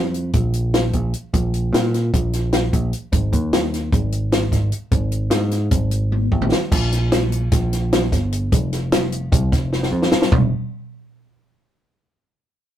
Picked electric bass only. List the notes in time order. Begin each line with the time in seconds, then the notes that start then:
Already playing: F2
0.34 A#1
0.94 A#1
1.34 A#1
1.73 A#2
2.14 A#1
2.73 A#1
3.12 G#1
3.33 D#2
3.93 G#1
4.52 G#1
4.92 G#1
5.30 G#2
5.71 G#1
6.32 A1
6.71 A#1
7.52 A#1
8.12 G1
8.53 F1
9.32 C2
9.53 F1
9.92 F2
10.32 F1